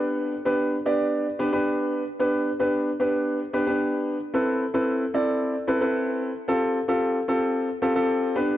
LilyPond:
\new Staff \with { instrumentName = "Grand piano" } { \time 4/4 \key a \minor \tempo 4 = 112 <b d' g' b'>8 r16 <b d' g' b'>8 r16 <b d' g' d''>8. r16 <b d' g' b'>16 <b d' g' b'>4 r16 | <b d' g' b'>8 r16 <b d' g' b'>8 r16 <b d' g' b'>8. r16 <b d' g' b'>16 <b d' g' b'>4 r16 | <c' e' a' b'>8 r16 <c' e' a' b'>8 r16 <c' e' a' d''>8. r16 <c' e' a' b'>16 <c' e' a' b'>4 r16 | <c' f' g' a'>8 r16 <c' f' g' a'>8 r16 <c' f' g' a'>8. r16 <c' f' g' a'>16 <c' f' g' a'>8. <b d' g' b'>8 | }